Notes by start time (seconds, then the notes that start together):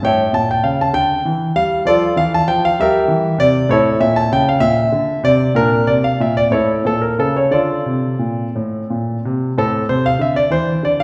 0.03 A2 C#5 E5 G5
0.33 A#2 A5
0.51 G5
0.64 C#3 F5
0.81 A5
0.93 D3 G5
1.25 E3
1.56 G3 F5
1.85 F3 F4 A4 D5
2.16 E3 F5
2.34 A5
2.48 F3 G5
2.65 F5
2.80 G3 G4 A#4 E5
3.08 E3
3.38 C3 D5
3.69 A2 E4 A4 C#5
4.00 A#2 E5
4.16 A5
4.32 C#3 G5
4.49 F5
4.60 A#2 E5
4.92 D3
5.24 C3 D5
5.55 A#2 D4 A#4
5.87 C3 D5
6.04 F5
6.20 A#2 E5
6.37 D5
6.51 A2 E4 A4 C#5
6.85 A#2 A4
7.02 A#4
7.19 C#3 A4
7.36 C#5
7.51 D3 F4 A4 D5
7.86 C3
8.19 A#2
8.55 A2
8.90 A#2
9.25 C3
9.58 A2 C4 A4
9.89 C3 C5
10.06 F5
10.19 D3 E5
10.36 D5
10.50 E3 C5
10.83 D3 D5
11.00 F5